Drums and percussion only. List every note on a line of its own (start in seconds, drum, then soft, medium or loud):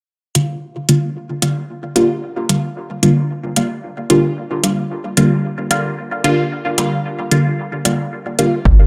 0.35 closed hi-hat medium
0.89 closed hi-hat medium
1.42 closed hi-hat medium
1.96 closed hi-hat medium
2.49 closed hi-hat medium
3.03 closed hi-hat medium
3.56 closed hi-hat medium
4.10 closed hi-hat medium
4.64 closed hi-hat medium
5.17 closed hi-hat medium
5.71 closed hi-hat medium
6.24 closed hi-hat medium
6.78 closed hi-hat medium
7.31 closed hi-hat medium
7.85 closed hi-hat medium
8.39 closed hi-hat medium
8.65 kick loud